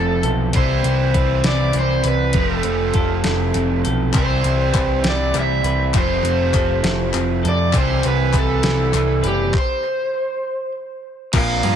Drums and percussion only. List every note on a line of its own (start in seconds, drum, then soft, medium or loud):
0.23 closed hi-hat medium
0.53 kick loud
0.53 closed hi-hat medium
0.84 closed hi-hat medium
1.14 kick medium
1.14 closed hi-hat medium
1.44 snare loud
1.44 closed hi-hat medium
1.73 closed hi-hat medium
2.04 closed hi-hat medium
2.33 kick loud
2.33 closed hi-hat medium
2.63 closed hi-hat medium
2.94 kick medium
2.94 closed hi-hat medium
3.24 snare loud
3.24 closed hi-hat medium
3.54 closed hi-hat medium
3.85 closed hi-hat medium
4.14 kick loud
4.14 clap loud
4.14 closed hi-hat medium
4.44 clap soft
4.44 closed hi-hat soft
4.74 kick medium
4.74 clap medium
4.74 closed hi-hat medium
5.04 snare loud
5.04 closed hi-hat medium
5.34 clap medium
5.34 closed hi-hat medium
5.64 closed hi-hat medium
5.94 kick loud
5.94 clap medium
5.94 closed hi-hat medium
6.23 clap soft
6.23 closed hi-hat medium
6.54 kick medium
6.54 clap medium
6.54 closed hi-hat medium
6.84 snare loud
6.84 closed hi-hat medium
7.14 clap medium
7.14 closed hi-hat medium
7.45 closed hi-hat medium
7.73 kick loud
7.73 clap loud
7.73 closed hi-hat medium
8.03 clap soft
8.03 closed hi-hat medium
8.33 kick medium
8.33 clap medium
8.33 closed hi-hat medium
8.63 snare loud
8.63 closed hi-hat medium
8.94 clap medium
8.94 closed hi-hat medium
9.24 closed hi-hat medium
9.54 kick loud
9.54 clap medium
11.33 kick loud
11.33 clap loud
11.33 crash loud
11.33 ride loud
11.63 ride medium